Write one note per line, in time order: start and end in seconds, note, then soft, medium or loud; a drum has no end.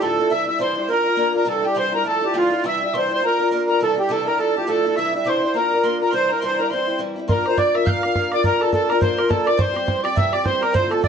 0.01 0.18 D2 medium
0.01 0.18 A2 medium
0.01 0.18 F3 medium
0.01 0.18 A3 medium
0.01 0.18 D4 medium
0.01 0.17 E4 medium
0.01 0.32 A4 loud
0.01 0.06 C6 medium
0.05 0.30 A5 medium
0.18 0.31 F3 soft
0.18 0.31 A3 soft
0.18 0.31 D4 medium
0.18 0.30 E4 medium
0.30 0.47 C3 medium
0.30 0.48 E3 medium
0.30 0.48 G3 medium
0.30 0.47 D4 medium
0.30 0.45 E4 medium
0.30 0.47 E5 loud
0.30 0.46 E6 medium
0.46 0.59 G3 soft
0.46 0.59 D4 soft
0.46 0.59 E4 medium
0.46 0.59 E5 medium
0.46 0.59 E6 medium
0.59 0.76 C3 medium
0.59 0.76 E3 medium
0.59 0.77 G3 medium
0.59 0.76 D4 medium
0.59 0.74 E4 medium
0.59 0.76 C5 medium
0.59 0.87 C6 medium
0.76 0.88 G3 soft
0.76 0.87 D4 soft
0.76 0.88 E4 medium
0.76 0.90 C5 medium
0.88 1.05 A#3 medium
0.88 1.06 D4 medium
0.88 1.05 F4 medium
0.88 1.32 A#4 loud
0.88 1.03 A#4 medium
0.88 0.94 C6 medium
0.93 1.32 A#5 medium
1.04 1.16 D4 soft
1.04 1.17 F4 soft
1.04 1.17 A#4 soft
1.17 1.34 A#3 medium
1.17 1.34 D4 medium
1.17 1.33 F4 medium
1.17 1.31 A#4 medium
1.32 1.45 D4 soft
1.32 1.46 F4 soft
1.32 1.46 A#4 medium
1.32 1.47 A#4 medium
1.32 1.50 A#5 medium
1.45 1.63 C3 medium
1.45 1.63 E3 medium
1.45 1.64 G3 medium
1.45 1.63 D4 medium
1.45 1.61 E4 medium
1.45 1.66 A5 medium
1.49 1.65 A4 medium
1.62 1.75 G3 soft
1.62 1.75 D4 soft
1.62 1.76 E4 medium
1.62 1.77 G4 medium
1.62 1.78 G5 medium
1.75 1.93 C3 medium
1.75 1.93 E3 medium
1.75 1.93 G3 medium
1.75 1.93 D4 medium
1.75 1.91 E4 medium
1.75 1.93 C5 medium
1.75 1.93 C6 medium
1.92 2.05 G3 soft
1.92 2.05 D4 medium
1.92 2.05 E4 medium
1.92 2.07 A#4 medium
1.92 2.05 A#5 medium
2.04 2.22 F3 soft
2.04 2.22 A3 medium
2.04 2.21 D4 medium
2.04 2.20 E4 medium
2.04 2.36 A5 medium
2.08 2.24 A4 medium
2.21 2.33 F3 soft
2.21 2.34 A3 soft
2.21 2.34 D4 soft
2.21 2.34 E4 soft
2.21 2.37 G4 medium
2.33 2.51 D2 medium
2.33 2.51 A2 medium
2.33 2.51 F3 medium
2.33 2.51 A3 medium
2.33 2.50 D4 medium
2.33 2.49 E4 medium
2.33 2.39 G5 medium
2.38 2.64 F4 medium
2.38 2.67 F5 medium
2.50 2.63 F3 soft
2.50 2.64 A3 soft
2.50 2.64 D4 soft
2.50 2.63 E4 soft
2.64 2.81 C3 medium
2.64 2.81 E3 medium
2.64 2.81 G3 medium
2.64 2.81 D4 medium
2.64 2.80 E4 medium
2.64 2.80 E6 medium
2.68 2.83 E5 loud
2.81 2.94 G3 soft
2.81 2.94 D4 soft
2.81 2.93 E4 medium
2.81 2.95 E6 medium
2.85 2.96 E5 medium
2.93 3.10 C3 medium
2.93 3.10 E3 medium
2.93 3.11 G3 medium
2.93 3.10 D4 medium
2.93 3.08 E4 medium
2.93 3.12 C5 medium
2.93 3.11 C6 medium
3.09 3.21 G3 soft
3.09 3.20 D4 soft
3.09 3.22 E4 medium
3.09 3.23 C6 medium
3.14 3.25 C5 medium
3.20 3.38 A#3 medium
3.20 3.39 D4 medium
3.20 3.38 F4 medium
3.20 3.37 A#4 medium
3.20 3.48 A#5 medium
3.26 3.69 A#4 medium
3.38 3.51 D4 soft
3.38 3.51 F4 soft
3.38 3.51 A#4 soft
3.51 3.68 A#3 medium
3.51 3.69 D4 medium
3.51 3.68 F4 medium
3.51 3.66 A#4 medium
3.67 3.81 D4 soft
3.67 3.81 F4 soft
3.67 3.80 A#4 soft
3.67 3.82 A#4 medium
3.67 3.80 A#5 medium
3.80 3.97 C3 medium
3.80 3.98 E3 medium
3.80 3.98 G3 medium
3.80 3.96 D4 medium
3.80 3.95 E4 medium
3.80 3.99 A4 loud
3.80 3.97 A5 medium
3.96 4.09 G3 soft
3.96 4.10 D4 soft
3.96 4.09 E4 soft
3.96 4.11 G4 medium
3.96 4.12 G5 medium
4.09 4.26 C3 medium
4.09 4.27 E3 medium
4.09 4.27 G3 medium
4.09 4.26 D4 medium
4.09 4.24 E4 medium
4.09 4.28 A4 medium
4.09 4.26 A5 medium
4.26 4.38 G3 soft
4.26 4.39 D4 medium
4.26 4.39 E4 soft
4.26 4.39 A#4 medium
4.26 4.40 A#5 medium
4.37 4.55 F3 medium
4.37 4.55 A3 soft
4.37 4.54 D4 medium
4.37 4.53 E4 medium
4.37 4.55 A4 medium
4.37 4.67 A5 medium
4.55 4.66 F3 soft
4.55 4.67 A3 soft
4.55 4.67 D4 soft
4.55 4.67 E4 soft
4.55 4.68 G4 medium
4.67 4.84 D2 medium
4.67 4.84 A2 medium
4.67 4.85 F3 medium
4.67 4.85 A3 medium
4.67 4.84 D4 medium
4.67 4.83 E4 medium
4.67 4.95 A4 medium
4.67 4.98 A5 medium
4.84 4.97 F3 soft
4.84 4.98 A3 soft
4.84 4.97 D4 medium
4.84 4.97 E4 soft
4.96 5.14 C3 medium
4.96 5.14 E3 medium
4.96 5.14 G3 medium
4.96 5.13 D4 medium
4.96 5.12 E4 medium
4.96 5.14 E5 loud
4.96 5.13 E6 medium
5.13 5.25 G3 soft
5.13 5.25 D4 soft
5.13 5.26 E4 soft
5.13 5.27 E5 medium
5.24 5.42 C3 medium
5.24 5.43 E3 medium
5.24 5.43 G3 medium
5.24 5.42 D4 medium
5.24 5.41 E4 loud
5.24 5.43 C5 medium
5.24 5.30 D6 medium
5.29 5.53 C6 medium
5.42 5.55 G3 soft
5.42 5.54 D4 medium
5.42 5.55 E4 medium
5.42 5.57 C5 medium
5.54 5.71 A#3 medium
5.54 5.72 D4 medium
5.54 5.72 F4 medium
5.54 5.98 A#4 medium
5.54 5.70 A#4 medium
5.54 5.85 A#5 medium
5.71 5.83 D4 soft
5.71 5.84 F4 soft
5.71 5.84 A#4 soft
5.83 6.01 A#3 medium
5.83 6.01 D4 medium
5.83 6.01 F4 medium
5.83 5.99 A#4 medium
5.83 6.00 C6 medium
6.00 6.12 D4 soft
6.00 6.13 F4 soft
6.00 6.13 A#4 soft
6.00 6.13 A#4 medium
6.00 6.13 A#5 medium
6.11 6.30 C3 medium
6.11 6.30 E3 medium
6.11 6.30 G3 medium
6.11 6.30 D4 medium
6.11 6.28 E4 medium
6.11 6.31 C5 loud
6.11 6.30 C6 medium
6.29 6.42 G3 soft
6.29 6.43 D4 soft
6.29 6.42 E4 soft
6.29 6.44 A#4 medium
6.29 6.42 A#5 medium
6.40 6.59 C3 medium
6.40 6.59 E3 medium
6.40 6.59 G3 medium
6.40 6.59 D4 medium
6.40 6.57 C6 medium
6.44 6.57 E4 medium
6.44 6.61 C5 medium
6.58 6.71 G3 soft
6.58 6.72 D4 soft
6.58 6.71 E4 medium
6.58 6.72 A#4 medium
6.58 6.72 A#5 medium
6.70 6.87 E3 soft
6.70 6.88 G3 medium
6.70 6.88 C4 medium
6.70 6.86 E4 medium
6.70 6.99 C5 medium
6.70 7.00 C6 medium
6.87 6.99 G3 soft
6.87 6.99 C4 soft
6.87 6.99 E4 soft
6.99 7.16 C3 medium
6.99 7.16 E3 medium
6.99 7.17 G3 medium
6.99 7.17 C4 medium
6.99 7.15 E4 medium
7.16 7.28 G3 soft
7.16 7.29 C4 soft
7.16 7.28 E4 soft
7.28 7.45 A#3 medium
7.28 7.45 D4 medium
7.28 7.45 F4 medium
7.28 7.46 A#4 medium
7.28 7.43 A#4 medium
7.28 7.33 C6 medium
7.28 bodhran medium
7.32 7.59 A#5 medium
7.38 bodhran soft
7.45 7.56 D4 soft
7.45 7.57 F4 soft
7.45 7.57 A#4 medium
7.45 7.59 C5 medium
7.45 bodhran medium
7.56 7.74 A#3 medium
7.56 7.74 D4 medium
7.56 7.74 F4 medium
7.56 7.73 A#4 medium
7.56 7.75 D5 medium
7.56 7.76 D6 medium
7.56 bodhran medium
7.74 7.85 D4 soft
7.74 7.85 F4 medium
7.74 7.86 A#4 medium
7.74 7.87 E5 medium
7.74 7.88 E6 loud
7.74 bodhran medium
7.85 8.02 A#3 medium
7.85 8.03 D4 medium
7.85 8.02 F4 medium
7.85 8.01 A#4 medium
7.85 8.33 F5 medium
7.85 7.91 G6 medium
7.85 bodhran medium
7.90 8.32 F6 medium
8.02 8.15 D4 soft
8.02 8.16 F4 soft
8.02 8.15 A#4 soft
8.02 bodhran medium
8.15 8.32 A#3 medium
8.15 8.32 D4 medium
8.15 8.32 F4 medium
8.15 8.31 A#4 medium
8.15 bodhran medium
8.32 8.43 D4 soft
8.32 8.44 F4 soft
8.32 8.44 A#4 soft
8.32 8.45 D5 medium
8.32 8.44 D6 medium
8.32 bodhran medium
8.43 8.60 A#3 medium
8.43 8.61 D4 medium
8.43 8.60 F4 medium
8.43 8.61 A#4 medium
8.43 8.59 A#4 medium
8.43 8.63 A#5 medium
8.43 bodhran medium
8.53 bodhran soft
8.60 8.72 D4 soft
8.60 8.73 F4 medium
8.60 8.71 A4 medium
8.60 8.72 A#4 medium
8.60 8.73 A5 medium
8.60 bodhran soft
8.72 8.89 A#3 medium
8.72 8.90 D4 medium
8.72 8.89 F4 medium
8.72 8.88 A4 medium
8.72 8.88 A#4 medium
8.72 8.91 A5 medium
8.72 bodhran medium
8.88 9.01 F4 medium
8.88 9.01 A#4 medium
8.88 9.01 A#5 medium
8.88 bodhran medium
8.92 9.01 D4 soft
9.01 9.18 A#3 medium
9.01 9.18 D4 medium
9.01 9.17 F4 medium
9.01 9.16 A#4 medium
9.01 9.18 C5 medium
9.01 9.31 C6 medium
9.01 bodhran medium
9.17 9.29 D4 soft
9.17 9.30 F4 soft
9.17 9.30 A#4 soft
9.17 9.30 A#4 medium
9.17 bodhran medium
9.29 9.46 A#3 medium
9.29 9.47 D4 medium
9.29 9.46 F4 medium
9.29 9.47 A4 medium
9.29 9.44 A#4 medium
9.29 9.49 A5 medium
9.29 bodhran loud
9.45 9.58 D4 soft
9.45 9.58 F4 soft
9.45 9.58 A#4 medium
9.45 9.59 D5 medium
9.45 9.58 D6 medium
9.45 bodhran medium
9.57 9.75 C3 medium
9.57 9.75 E3 medium
9.57 9.75 G3 medium
9.57 9.74 C4 medium
9.57 9.72 G4 medium
9.57 10.00 C5 medium
9.57 9.62 D6 medium
9.57 bodhran medium
9.61 10.05 C6 medium
9.74 9.86 G3 soft
9.74 9.86 C4 medium
9.74 9.87 G4 medium
9.74 bodhran medium
9.86 10.04 E3 medium
9.86 10.04 G3 medium
9.86 10.04 C4 medium
9.86 10.03 G4 medium
9.86 bodhran medium
10.03 10.15 G3 soft
10.03 10.16 C4 soft
10.03 10.16 G4 medium
10.03 10.17 D5 medium
10.03 10.16 D6 medium
10.03 bodhran medium
10.15 10.33 C3 medium
10.15 10.33 E3 medium
10.15 10.33 G3 medium
10.15 10.33 C4 medium
10.15 10.31 G4 medium
10.15 10.33 E5 medium
10.15 10.35 E6 loud
10.15 bodhran medium
10.32 10.44 G3 soft
10.32 10.45 C4 soft
10.32 10.45 G4 medium
10.32 10.45 D5 medium
10.32 10.45 D6 medium
10.32 bodhran medium
10.44 10.61 E3 medium
10.44 10.62 G3 medium
10.44 10.61 C4 medium
10.44 10.59 G4 medium
10.44 10.62 C5 medium
10.44 10.61 C6 medium
10.44 bodhran medium
10.61 10.74 G3 soft
10.61 10.73 C4 medium
10.61 10.73 G4 medium
10.61 10.74 A#4 medium
10.61 10.76 A#5 medium
10.61 bodhran medium
10.73 10.90 D2 medium
10.73 10.91 A2 medium
10.73 10.91 D3 medium
10.73 10.89 A3 medium
10.73 10.90 C4 medium
10.73 10.88 F4 medium
10.73 10.91 C5 loud
10.73 10.92 C6 medium
10.73 bodhran medium
10.83 bodhran soft
10.89 11.00 D3 soft
10.89 11.02 A3 soft
10.89 11.01 C4 soft
10.89 11.02 F4 medium
10.89 11.02 A4 medium
10.89 11.03 A5 medium
10.89 bodhran medium
11.01 11.08 D3 medium
11.01 11.08 A3 medium
11.01 11.08 C4 medium
11.01 11.08 F4 medium
11.01 11.08 D5 loud
11.01 11.08 E6 medium
11.01 bodhran medium